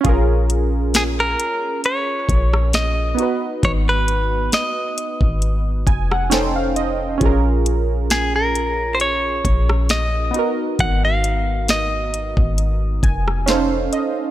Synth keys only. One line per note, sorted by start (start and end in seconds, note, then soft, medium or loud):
0.01 3.12 C#4 medium
0.01 3.14 F4 medium
0.06 3.15 G#4 medium
0.06 3.16 A#4 medium
3.15 6.26 B3 medium
3.15 6.27 D#4 medium
3.20 6.28 F#4 medium
3.20 6.30 B4 medium
5.87 6.09 G#5 medium
6.11 6.30 F#5 medium
6.30 7.16 C#4 medium
6.30 7.21 D#4 medium
6.30 7.22 A4 medium
6.30 7.22 C5 medium
6.30 6.54 G5 medium
6.56 6.75 F5 medium
6.76 7.18 D#5 medium
7.18 10.29 C#4 medium
7.18 10.30 F4 medium
7.23 10.31 G#4 medium
7.23 10.33 A#4 medium
10.31 13.42 B3 medium
10.31 13.43 D#4 medium
10.36 13.45 F#4 medium
10.36 13.46 A#4 medium
13.03 13.45 G#5 medium
13.46 14.31 C#4 medium
13.46 14.31 D#4 medium
13.46 14.31 A4 medium
13.46 14.31 C5 medium
13.46 13.90 F5 medium
13.93 14.31 D#5 medium